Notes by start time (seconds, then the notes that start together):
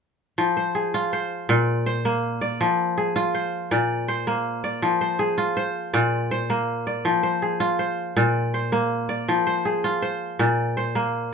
0.38 F3
0.57 C5
0.75 G#4
0.94 F4
1.13 C5
1.49 A#2 D5
1.86 C5
2.05 A#3
2.41 D5
2.61 F3
2.98 G#4
3.16 F4
3.34 C5
3.71 A#2 D5
4.08 C5
4.27 A#3
4.64 D5
4.82 F3
5.01 C5
5.19 G#4
5.38 F4
5.57 C5
5.93 A#2 D5
6.31 C5
6.50 A#3
6.87 D5
7.05 F3
7.23 C5
7.42 G#4
7.60 F4
7.79 C5
8.17 A#2 D5
8.54 C5
8.72 A#3
9.09 D5
9.29 F3
9.47 C5
9.65 G#4
9.84 F4
10.02 C5
10.39 A#2 D5
10.77 C5
10.95 A#3